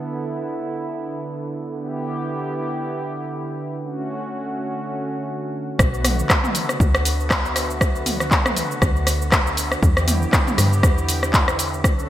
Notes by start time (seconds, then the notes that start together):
Already playing: D3 B3 E4 A4
1.76 B3 E4 G4
3.78 A3 C#4 F#4
5.79 B1 D3 A3 B3 F#4, kick, cross-stick, cabasa
5.94 cabasa
6.05 cross-stick, mid tom, open hi-hat, cabasa
6.19 cabasa
6.30 kick, cross-stick, clap, cabasa
6.44 mid tom, cabasa
6.55 open hi-hat, cabasa
6.69 cross-stick, cabasa
6.80 D2, kick, cabasa
6.95 cross-stick, cabasa
7.05 open hi-hat, cabasa
7.20 cabasa
7.31 kick, cross-stick, clap, cabasa
7.46 cabasa
7.56 cross-stick, open hi-hat, cabasa
7.71 cabasa
7.81 kick, cross-stick, cabasa
7.96 cabasa
8.06 mid tom, open hi-hat, cabasa
8.20 cross-stick, cabasa
8.31 kick, clap, cabasa
8.46 cross-stick, mid tom, cabasa
8.57 open hi-hat, cabasa
8.71 cabasa
8.82 D2, kick, cross-stick, cabasa
8.96 cabasa
9.07 cross-stick, open hi-hat, cabasa
9.22 cabasa
9.32 kick, cross-stick, clap, cabasa
9.47 cabasa
9.57 open hi-hat, cabasa
9.72 cross-stick, cabasa
9.83 E2 B3 E4 G4, kick, cabasa
9.97 cross-stick, cabasa
10.08 mid tom, open hi-hat, cabasa
10.22 cabasa
10.33 kick, cross-stick, clap, cabasa
10.47 mid tom, cabasa
10.58 G2, cross-stick, open hi-hat, cabasa
10.73 cabasa
10.83 E2, kick, cross-stick, cabasa
10.98 cabasa
11.09 open hi-hat, cabasa
11.23 cross-stick, cabasa
11.34 kick, clap, cabasa
11.48 cross-stick, cabasa
11.59 open hi-hat, cabasa
11.74 cabasa
11.84 D2 C#4 F#4 A4, kick, cross-stick, cabasa
11.99 cabasa